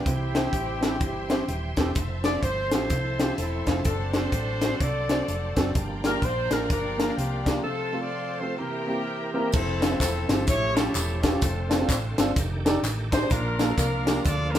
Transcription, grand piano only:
0.06 C3
0.34 C4 E4 G4 C5
0.81 C4 E4 G4 A4
1.30 C4 E4 G4 C5
1.78 C4 E4 G4 A4
2.24 C4 E4 F4 A4
2.72 C4 E4 F4 G4
3.19 C4 E4 F4 G4
3.66 C4 E4 F4 A4
4.14 C4 D4 F#4 A4
4.61 C4 D4 F#4 C5
5.09 C4 D4 F#4 C5
5.57 C4 D4 F#4 A4
5.75 G2
6.04 A#3 D4 F4 G4
6.51 A#3 D4 F4 A4
6.98 A#3 D4 F4 A#4
7.45 A#3 D4 F4 G4
7.64 C3
7.92 A3 C4 F4 A4
8.41 A3 C4 F4 A4
8.60 C3
8.87 A#3 C4 E4 G4
9.34 A#3 C4 E4 A#4
9.80 C4 E4 F4 A4
9.90 C4 E4 F4 C5
10.28 C4 E4 F4 G4
10.47 A2
10.75 C#4 F4 G4 A4
11.23 C#4 F4 G4 A4
11.31 C#4 F4 G4 A4
11.69 C4 D4 F4 A4
11.79 C4 D4 F4 A4
12.18 C4 D4 F4 A4
12.65 D4 D#4 G4 A4
13.12 D4 D#4 G4 C5
13.22 D4 D#4 G4 C5
13.32 A#2
13.60 A#3 D4 F4 A4
13.68 A#3 D4 F4 A4
14.05 A#3 D4 F4 G4
14.54 A#3 D4 F4 A4

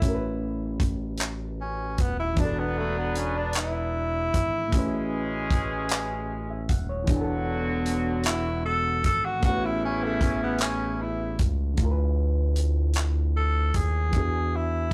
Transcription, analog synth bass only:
0.03 A1
1.99 D#1
2.38 E1
4.35 G#1
4.73 A1
6.70 D#1
7.08 E1
9.05 G#1
9.44 A1
11.40 C#2
11.79 D2
13.75 D#2
14.14 E2

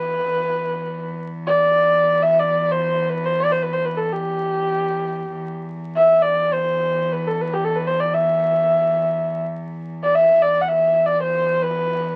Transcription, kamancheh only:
Already playing: B4
1.47 D5
2.22 E5
2.39 D5
2.72 C5
3.09 B4
3.25 C5
3.40 D5
3.52 C5
3.63 B4
3.73 C5
3.85 B4
3.97 A4
4.12 G4
5.97 E5
6.22 D5
6.53 C5
7.12 B4
7.27 A4
7.41 B4
7.53 G4
7.64 A4
7.76 B4
7.87 C5
8.00 D5
8.14 E5
10.03 D5
10.15 E5
10.42 D5
10.62 F#5
10.69 E5
11.06 D5
11.23 C5
11.63 B4

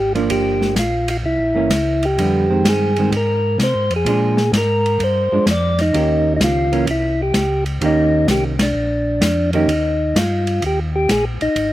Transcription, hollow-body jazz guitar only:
0.15 F3 A#3 D4
1.55 E3 A#3 C#4
2.19 D3 G3 B3
2.50 D#3 G#3 C4
2.98 D#3 G#3 C4
4.06 F3 G#3 D4
5.32 F3 G#3 D4
5.94 D#3 A#3 C#4 G4
6.72 E3 A#3 C#4
7.81 D#3 A#3 C#4 G4
9.54 D#3 A#3 C#4 G4

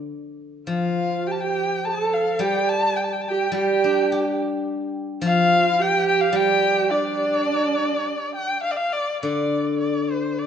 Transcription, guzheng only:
0.67 F3
2.39 G3
3.52 G3
3.84 D4
4.12 G4
5.21 F3
6.33 G3
9.23 D3

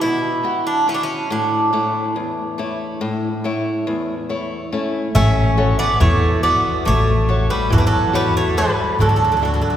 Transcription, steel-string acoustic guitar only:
Already playing: E4 F#4 G4
0.03 B2
0.43 E4 F#4 G4
0.87 E4 F#4 G4
1.30 A2
1.73 A3 E4 C#5
2.16 E2
2.58 A3 E4 C#5
3.01 A2
3.44 A3 E4 C#5
3.87 E2
4.29 A3 E4 C#5
4.72 A3 C#4 E4
5.15 A3
5.57 F#4 A4 C#5
6.00 E3
6.43 F#4 A4 E5
6.86 A3
7.28 F#4 A4 C#5
7.70 E3
8.13 F#4 A4 C#5
8.57 F#4 A4 C#5
9.00 D3
9.43 D4 F#4 A4

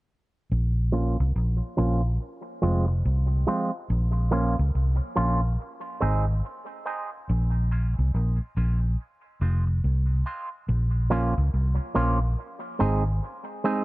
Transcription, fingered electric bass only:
0.52 A#1
1.20 C2
1.36 A#1
1.78 A#1
2.63 F1
3.05 C2
3.90 A#1
4.59 C#2
4.75 C2
5.17 A#1
6.02 G#1
7.30 A#1
7.99 C2
8.14 A#1
8.57 A#1
9.41 F1
9.84 C2
10.69 A#1
11.38 C#2
11.54 C2
11.96 A#1
12.81 G#1

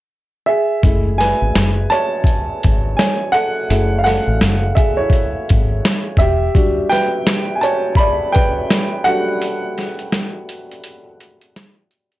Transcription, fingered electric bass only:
0.84 F#1
1.42 G#1
1.56 F#1
2.65 G#1
3.70 F#1
4.27 A1
4.41 F#1
5.51 G#1
6.17 E1

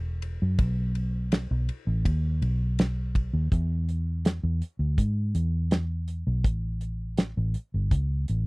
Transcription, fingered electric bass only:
Already playing: E1
0.42 F#2
0.59 B1
1.51 B1
1.87 A1
2.05 D#2
2.42 B1
3.33 D#2
3.52 E2
4.43 E2
4.79 D2
4.98 G#2
5.35 E2
6.27 B1
6.45 A1
7.37 A1
7.74 G1
7.91 C#2
8.29 A1

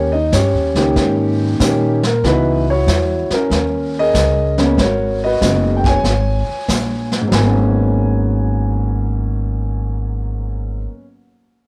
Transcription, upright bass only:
Already playing: D#2
0.32 G2
0.53 D#2
0.75 C#2
0.96 G#2
1.60 A#2
2.24 C#2
2.87 E2
3.30 muted upright bass stroke
3.50 D#2
4.14 C#2
4.78 G#1
5.41 F#1
6.04 G#1
6.49 muted upright bass stroke
6.68 A#1
7.31 G#1

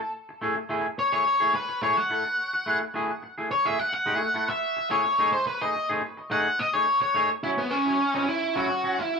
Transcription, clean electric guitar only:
0.01 muted clean electric guitar stroke
0.29 muted clean electric guitar stroke
0.42 A3 E4 G#4
0.56 muted clean electric guitar stroke
0.69 A3 E4 G#4
0.98 muted clean electric guitar stroke
1.12 A3 E4 G#4
1.25 muted clean electric guitar stroke
1.40 A3 E4 G#4
1.54 muted clean electric guitar stroke
1.69 muted clean electric guitar stroke
1.82 A3 E4 G#4
1.97 muted clean electric guitar stroke
2.10 A3 E4 A4
2.25 muted clean electric guitar stroke
2.53 muted clean electric guitar stroke
2.66 A3 E4 G#4
2.82 muted clean electric guitar stroke
2.94 A3 E4 G#4
3.23 muted clean electric guitar stroke
3.38 A3 E4 G#4
3.50 muted clean electric guitar stroke
3.65 A3 E4 G#4
3.79 muted clean electric guitar stroke
3.93 muted clean electric guitar stroke
4.06 A3 E4 G#4
4.21 muted clean electric guitar stroke
4.34 A3 E4 A4
4.49 muted clean electric guitar stroke
4.77 muted clean electric guitar stroke
4.90 A3 E4 G#4
5.06 muted clean electric guitar stroke
5.19 A3 D#4 G#4
5.47 muted clean electric guitar stroke
5.61 A3 D#4 G#4
5.75 muted clean electric guitar stroke
5.90 A3 D#4 G#4
6.03 muted clean electric guitar stroke
6.17 muted clean electric guitar stroke
6.30 A3 D#4 G#4
6.59 muted clean electric guitar stroke
6.74 A3 D#4 G#4
7.02 muted clean electric guitar stroke
7.15 A3 D#4 G#4
7.30 muted clean electric guitar stroke
7.43 F#3 C#4 E4
7.72 muted clean electric guitar stroke
7.86 F#3 C#4 E4
7.99 muted clean electric guitar stroke
8.15 F#3 C#4 E4
8.27 muted clean electric guitar stroke
8.42 muted clean electric guitar stroke
8.55 F#3 C#4 E4
8.70 muted clean electric guitar stroke
8.84 F#3 C#4 F#4
8.98 muted clean electric guitar stroke

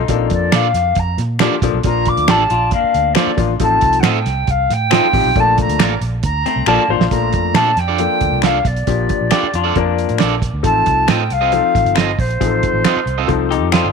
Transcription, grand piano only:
0.09 F3 A#3 D4 A4
1.41 F3 A#3 D4 G4
1.63 F3 A#3 D4 A4
1.84 F3 A#3 D4 F4
3.15 F3 A#3 D4 C5
3.37 F3 A#3 D4 F4
3.60 F3 C4 D#4 A4
4.92 F3 C4 D#4 F4
5.13 F3 C4 D#4 G4
5.36 F3 A3 A#3 D4
6.67 F3 A#3 D4 A4
6.90 F3 A#3 D4 C5
7.12 F3 A3 A#3 D4
7.99 F3 A#3 D4 A4
8.87 F3 A#3 D4 G4
9.77 F3 A#3 D4 A#4
10.63 F3 C4 D#4 A4
11.52 F3 C4 D#4 A4
12.40 F3 C4 D#4 G#4
12.46 A4
13.28 F3 C4 D#4 A4

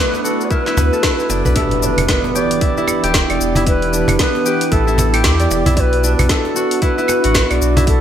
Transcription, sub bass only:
0.77 D2
1.30 F#1
1.45 B1
1.98 E1
3.04 D1
3.30 E1
3.40 E1
4.09 E1
4.72 A1
5.24 E2
5.51 E1
5.67 B1
6.19 B1
7.25 A1
7.51 B1
7.61 B1

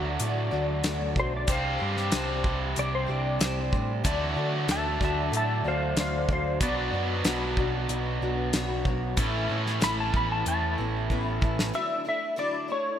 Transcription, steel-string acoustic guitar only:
Already playing: A3 D4 F#4 D5
0.19 A3 D4 F#4 D5
0.51 A3 D4 F#4 D5
0.83 D3 E3 A3 D4 F#4 D5
1.15 A3 D4 F#4 D5
1.47 C4 D4 G4 C5
1.79 D4 G4 C5
2.12 C4 D4 G4 C5
2.43 D4 G4 C5
2.75 C4 D4 G4 C5
3.07 D4 G4 C5
3.39 C4 D4 G4 C5
3.72 D4 G4 C5
4.04 D3 E3 A3 D4 F#4 D5
4.35 A3 D4 F#4 D5
4.68 D3 E3 A3 D4 F#4 D5
5.00 A3 D4 F#4 D5
5.32 A3 D4 F#4 D5
5.64 A3 D4 F#4 D5
5.96 D3 E3 A3 D4 F#4 D5
6.29 A3 D4 F#4 D5
6.61 B2 F#3 B3 D4 F#4
6.93 B3 D4 F#4
7.24 B2 F#3 B3 D4 F#4
7.58 B3 D4 F#4
7.88 B3 D4 F#4
8.22 B3 D4 F#4
8.53 B2 F#3 B3 D4 F#4 C#5
8.85 B3 D4 F#4 C#5
9.17 A2 A3 B3 C#4 E4
9.50 B3 C#4
9.80 A2 A3 B3 C#4 E4
10.12 B3 C#4 E4
10.45 A3 B3 C#4 E4
10.78 B3 C#4 E4
11.10 A2 A3 B3 C#4 E4
11.41 B3 C#4 E4
11.73 D3 F#3 A3 D4 E4
12.05 A3 D4 E4
12.36 D3 F#3 A3 D4 E4
12.68 A3 D4 E4

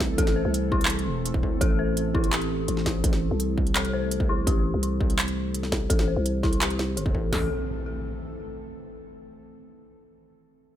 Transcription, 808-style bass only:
Already playing: C2
0.18 A1
0.45 C2
1.07 E1
1.43 D2
1.61 A1
2.68 A1
3.04 A1
3.31 C2
4.47 A1
4.74 C2
5.90 A1
6.17 C2
6.97 G1
7.15 A1
7.33 A1

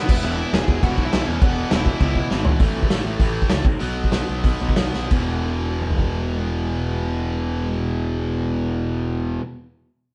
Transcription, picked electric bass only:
0.09 E1
0.23 E1
0.53 E1
0.68 E1
0.83 E1
0.98 B1
1.13 B1
1.28 E2
1.42 E1
1.72 E1
2.00 C#2
2.31 G#1
2.60 A1
2.76 A1
2.90 A1
3.05 A1
3.20 A1
3.50 C#2
3.65 B1
3.82 B1
4.13 B1
4.29 B1
4.44 B1
4.61 B1
4.78 B1
4.95 B1
5.11 E1

